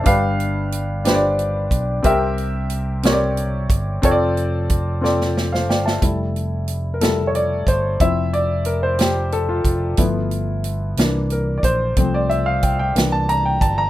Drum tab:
HH |x-x-x-x-x-x-|x-x-x-x-x-x-|x-x-x-------|x-x-x-x-x-x-|
SD |------o-----|------o-----|------oooooo|------o-----|
BD |o---------o-|o---------o-|o---o-------|o---------o-|

HH |x-x-x-x-x-x-|x-x-x-x-x-x-|x-x-x-x-x-x-|
SD |------o-----|------o-----|------o-----|
BD |o---------o-|o---------o-|o---o-----o-|